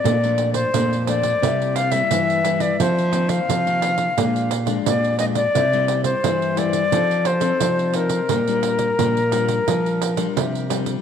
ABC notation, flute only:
X:1
M:4/4
L:1/16
Q:1/4=87
K:Bb
V:1 name="Flute"
d3 c3 d4 f =e4 d | c3 f6- f z2 d2 e d- | d3 c3 d4 c4 B2- | B12- B2 z2 |]